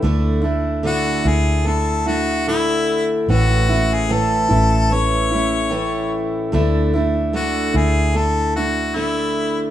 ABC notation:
X:1
M:4/4
L:1/16
Q:"Swing 16ths" 1/4=74
K:Dlyd
V:1 name="Harmonica"
z4 F2 G2 A2 F2 E3 z | F3 G A4 c6 z2 | z4 F2 G2 A2 F2 E3 z |]
V:2 name="Steel-string acoustic guitar"
[D,A,DE]2 [A,DE]2 [D,A,DE]2 [A,DE]2 [D,A,DE]2 [A,DE]2 [D,A,DE]4 | [A,,E,A,CE]2 [A,CE]2 [A,,E,A,CE]2 [A,CE]2 [E,A,CE]2 [A,CE]2 [A,,E,A,CE]4 | [D,A,DE]2 [A,DE]2 [D,A,DE]2 [A,DE]2 [D,A,DE]2 [A,DE]2 [D,A,DE]4 |]
V:3 name="Fingered electric bass" clef=bass
D,,6 D,,8- D,,2 | A,,,6 A,,,8- A,,,2 | D,,6 D,,8- D,,2 |]